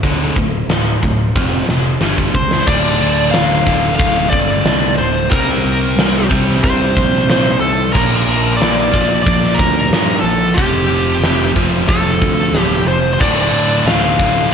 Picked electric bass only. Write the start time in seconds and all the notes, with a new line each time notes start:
0.03 D1
0.36 D1
0.68 D1
1.03 D1
1.35 F1
1.69 F1
2.01 G1
2.34 C#2
2.67 D1
3.01 D1
3.33 D1
3.67 D1
3.99 D1
4.32 G1
4.65 C2
4.99 D1
5.31 C2
5.64 C2
5.97 C2
6.30 C2
6.63 C2
6.96 A#1
7.28 A#1
7.60 C2
7.95 A#1
8.27 A#1
8.60 A#1
8.93 A#1
9.26 A#1
9.59 D2
9.90 G2
10.23 A#1
10.58 F1
10.89 F1
11.20 F1
11.56 F1
11.88 F1
12.21 D2
12.53 D1
12.85 F1
13.20 D1
13.51 D1
13.84 D1
14.19 D1